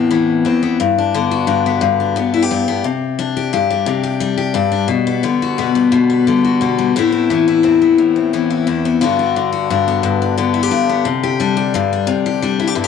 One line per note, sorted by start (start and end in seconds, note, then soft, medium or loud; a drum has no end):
0.00 0.45 A2 medium
0.00 0.45 C4 medium
0.11 0.77 E3 medium
0.11 0.61 B3 medium
0.45 0.79 E2 medium
0.45 0.78 C4 medium
0.63 0.78 B3 medium
0.80 1.46 G2 medium
0.98 1.47 D4 medium
1.14 2.15 D3 medium
1.14 1.65 B3 medium
1.31 2.33 F#4 medium
1.47 1.80 G2 medium
1.47 1.99 D4 medium
1.66 2.16 B3 medium
1.81 2.50 G2 medium
2.00 2.51 D4 medium
2.16 2.67 B3 medium
2.16 muted steel-string acoustic guitar stroke medium
2.34 2.42 E4 medium
2.42 2.85 G4 medium
2.51 2.83 G2 medium
2.51 2.87 D4 medium
2.68 2.83 B3 medium
2.84 3.53 C3 medium
3.19 3.70 D4 medium
3.19 muted steel-string acoustic guitar stroke medium
3.37 3.53 G4 medium
3.53 3.87 G2 medium
3.53 4.02 G4 medium
3.70 4.20 D4 medium
3.86 4.55 C3 medium
4.04 4.36 G4 medium
4.20 5.22 G3 medium
4.20 4.70 D4 medium
4.38 4.54 G4 medium
4.54 4.87 G2 medium
4.54 4.88 G4 medium
4.72 4.88 D4 medium
4.88 5.23 B2 medium
5.07 5.58 B3 medium
5.23 6.26 D3 medium
5.23 5.74 G3 medium
5.42 6.43 F#4 medium
5.58 5.91 B2 medium
5.58 6.09 B3 medium
5.75 6.27 G3 medium
5.92 6.27 B2 medium
6.10 6.61 B3 medium
6.27 6.95 D3 medium
6.27 6.77 G3 medium
6.45 6.94 F#4 medium
6.61 6.93 B2 medium
6.61 6.98 B3 medium
6.79 6.96 G3 medium
6.96 7.97 A2 medium
6.96 7.31 B3 medium
6.96 7.11 C4 medium
6.96 7.47 E4 medium
6.96 muted steel-string acoustic guitar stroke medium
7.12 7.63 C4 medium
7.30 8.32 E3 medium
7.30 7.81 B3 medium
7.48 8.49 E4 medium
7.63 7.98 E2 medium
7.63 8.15 C4 medium
7.82 8.33 B3 medium
7.98 8.67 A2 medium
8.16 8.66 C4 medium
8.33 8.99 E3 medium
8.33 8.84 B3 medium
8.50 9.01 E4 medium
8.67 9.01 E2 medium
8.67 8.99 C4 medium
8.85 8.99 B3 medium
9.01 9.69 G2 medium
9.01 9.35 D3 medium
9.01 9.35 B3 medium
9.01 9.19 D4 medium
9.01 9.51 F#4 medium
9.19 9.70 D4 medium
9.36 10.36 D3 medium
9.52 10.53 F#4 medium
9.70 10.02 G2 medium
9.70 10.21 D4 medium
9.88 10.37 B3 medium
10.03 10.70 G2 medium
10.22 10.71 D4 medium
10.38 12.88 D3 medium
10.38 10.88 B3 medium
10.54 10.63 E4 medium
10.63 11.06 G4 medium
10.71 11.03 G2 medium
10.71 11.08 D4 medium
10.89 11.04 B3 medium
11.05 11.74 C3 medium
11.23 11.56 G4 medium
11.40 12.42 G3 medium
11.40 11.92 D4 medium
11.57 11.75 G4 medium
11.74 12.08 G2 medium
11.74 muted steel-string acoustic guitar stroke medium
11.93 12.43 D4 medium
12.07 12.76 C3 medium
12.26 12.59 G4 medium
12.42 12.88 G3 medium
12.42 12.88 D4 medium
12.60 12.67 E4 medium
12.67 12.76 G4 medium
12.75 12.88 G2 medium
12.75 12.84 E4 medium
12.84 12.88 G4 medium